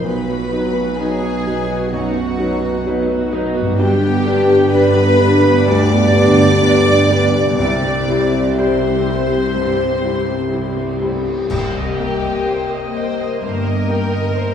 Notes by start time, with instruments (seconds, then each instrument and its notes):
Already playing: harp B2 F#3 D#4, french horn section F4
0.00 double bass section B1, felt piano B1, harp B4, flute section B4, violin section B4
0.04 cello section B2, viola section F#3 D#4, french horn section B3, violin section B5
0.29 viola section B3 F#4
0.52 felt piano F#3 D#4 B4, viola section F#3 D#4
0.74 viola section B3 F#4
0.97 viola section F#3 D#4, felt piano F#3 D#4 B4, french horn section D#4, flute section G#4, violin section G#4 G#5
1.22 viola section B3 F#4
1.45 viola section F#3 D#4, felt piano F#3 D#4 B4
1.68 viola section B3 F#4
1.91 felt piano F#2, viola section F#3 D#4, flute section F#4, violin section F#4 F#5
2.14 viola section B3 F#4
2.39 felt piano F#3 D#4 B4, viola section F#3 D#4
2.62 viola section B3 F#4
2.86 felt piano F#3 D#4 B4, viola section F#3 D#4
3.08 viola section B3 F#4
3.32 viola section F#3 D#4, felt piano F#3 D#4 B4
3.55 viola section B3 F#4
3.60 harp G2
3.64 harp G3
3.69 harp D4
3.73 violin section G4, harp B4
3.77 double bass section G1, cello section G2, felt piano G2, viola section G3 D4, french horn section B3 D4, flute section G4, violin section G5
4.05 viola section B3 G4
4.26 felt piano G3 D4 B4, viola section G3 D4
4.50 viola section B3 G4
4.72 felt piano G3 D4 B4, viola section G3 D4, flute section B4, violin section B4 B5
4.95 viola section B3 G4
5.18 viola section G3 D4, felt piano G3 D4 B4
5.42 viola section B3 G4
5.65 felt piano D2, viola section G3 D4, violin section D5 D6, flute section D5
5.90 viola section B3 G4
6.13 felt piano G3 D4 B4, viola section G3 D4
6.39 viola section B3 G4
6.61 felt piano G3 D4 B4, viola section G3 D4
6.86 viola section B3 G4
7.09 viola section G3 D4, felt piano G3 D4 B4
7.34 viola section B3 G4
7.40 harp C3
7.44 harp G3
7.49 harp E4
7.53 double bass section C2, harp C5
7.57 felt piano C2, cello section C3, viola section G3 E4, french horn section C4 E4, violin section D5 D6, flute section D5
7.82 viola section C4 G4
8.08 viola section G3 E4, felt piano G3 E4 C5
8.32 viola section C4 G4
8.55 viola section G3 E4, felt piano G3 E4 C5, violin section C5 C6, flute section C5
8.81 viola section C4 G4
9.05 viola section G3 E4, felt piano G3 E4 C5
9.29 viola section C4 G4
9.54 felt piano G2, viola section G3 E4
9.78 viola section C4 G4
10.02 viola section G3 E4, felt piano G3 E4 C5
10.26 viola section C4 G4
10.49 viola section G3 E4
10.54 felt piano G3 E4 C5
10.75 viola section C4 G4
10.99 viola section G3 E4, felt piano G3 E4 C5
11.24 viola section C4 G4
11.50 cello section C2, double bass section C2, felt piano C2, harp C3, viola section A#3 C5, violin section G4 D#5, concert bass drum, crash
11.75 harp A#3, viola section D#5
11.98 felt piano A#3, harp D#4, viola section G5
12.22 harp C5, viola section D#5
12.46 viola section C5, felt piano C5
12.70 harp D#5, viola section D#5
12.93 harp A#4, violin section C5, felt piano D#5, viola section G5
13.17 harp C5, viola section D#5
13.40 double bass section G1, cello section G2, felt piano G2, harp G3, violin section A#4, viola section C5
13.64 harp A#3, viola section D#5
13.88 felt piano A#3, harp D#4, viola section G5
14.12 harp C5, viola section D#5
14.35 harp A#4, viola section C5, felt piano C5